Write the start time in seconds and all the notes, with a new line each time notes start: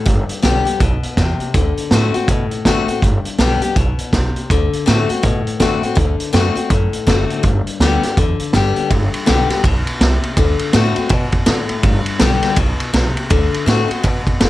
0.06 G1 G2, kick, closed hi-hat
0.29 muted upright bass stroke, closed hi-hat
0.42 B1 D3 G3 B3 G4, snare, closed hi-hat
0.65 B3 G4, muted upright bass stroke, closed hi-hat
0.80 B1 B2, kick, closed hi-hat
1.03 muted upright bass stroke, closed hi-hat
1.17 E2 C3, kick, snare, closed hi-hat
1.40 muted upright bass stroke, closed hi-hat
1.54 D2 D3, kick, closed hi-hat
1.77 muted upright bass stroke, closed hi-hat
1.91 A2 D3 A3 C4 F#4, snare, closed hi-hat
2.14 C4 F#4, muted upright bass stroke, closed hi-hat
2.28 A2 B2, kick, closed hi-hat
2.51 muted upright bass stroke, closed hi-hat
2.65 D3 A3 C4 F#4, kick, snare, closed hi-hat
2.88 C4 F#4, muted upright bass stroke, closed hi-hat
3.02 G1 G2, kick, closed hi-hat
3.24 muted upright bass stroke, closed hi-hat
3.38 B1 D3 G3 B3 G4, snare, closed hi-hat
3.62 B3 G4, muted upright bass stroke, closed hi-hat
3.76 B1 B2, kick, closed hi-hat
3.99 muted upright bass stroke, closed hi-hat
4.13 B1 C3, kick, snare, closed hi-hat
4.36 muted upright bass stroke, closed hi-hat
4.50 D2 D3, kick, closed hi-hat
4.73 closed hi-hat
4.86 A2 D3 A3 C4 F#4, snare, closed hi-hat
5.09 C4 F#4, muted upright bass stroke, closed hi-hat
5.23 A2 B2, kick, closed hi-hat
5.47 muted upright bass stroke, closed hi-hat
5.60 D3 A3 C4 F#4, kick, snare, closed hi-hat
5.83 C4 F#4, muted upright bass stroke, closed hi-hat
5.95 D2 D3, kick, closed hi-hat
6.20 muted upright bass stroke, closed hi-hat
6.33 F#2 D3 A3 C4 F#4, snare, closed hi-hat
6.55 C4 F#4, muted upright bass stroke, closed hi-hat
6.70 F#2 A2, kick, closed hi-hat
6.93 muted upright bass stroke, closed hi-hat
7.07 F#1 D3 A3 C4 F#4, kick, snare, closed hi-hat
7.30 muted upright bass stroke, closed hi-hat
7.43 G1 G2, kick, closed hi-hat
7.66 muted upright bass stroke, closed hi-hat
7.80 D2 D3 G3 B3 G4, snare, closed hi-hat
8.03 B3 G4, muted upright bass stroke, snare, closed hi-hat
8.17 E2 D3, kick, closed hi-hat
8.39 muted upright bass stroke, closed hi-hat
8.53 G2 D3 G3 B3 G4, kick, snare, closed hi-hat
8.76 muted upright bass stroke, closed hi-hat
8.90 G1 G2, kick, ride
9.14 ride
9.26 B1 D3 G3 B3 G4, snare, ride
9.50 B3 G4, muted upright bass stroke, snare, ride
9.64 B1 B2, kick, ride
9.87 muted upright bass stroke, ride
10.00 C2 C3, snare, ride
10.23 ride
10.37 D2 D3, kick, ride
10.59 muted upright bass stroke, ride
10.73 A2 D3 A3 C4 F#4, snare, ride
10.96 C4 F#4, muted upright bass stroke, ride
11.09 B2, kick, ride
11.32 muted upright bass stroke, kick, ride
11.46 A2 D3, snare, ride
11.69 muted upright bass stroke, ride
11.83 G1 G2, kick, ride
12.06 muted upright bass stroke, ride
12.19 B1 D3 G3 B3 G4, snare, ride
12.43 muted upright bass stroke, snare, ride
12.56 B1 B2, kick, ride
12.79 muted upright bass stroke, ride
12.93 B1 C3, snare, ride
13.16 muted upright bass stroke, ride
13.30 D2 D3, kick, ride
13.53 muted upright bass stroke, ride
13.66 A2 D3 A3 C4 F#4, snare, ride
13.88 C4 F#4, muted upright bass stroke, ride
14.03 B2, kick, ride
14.27 muted upright bass stroke, kick, ride
14.40 F#1 A2, snare, ride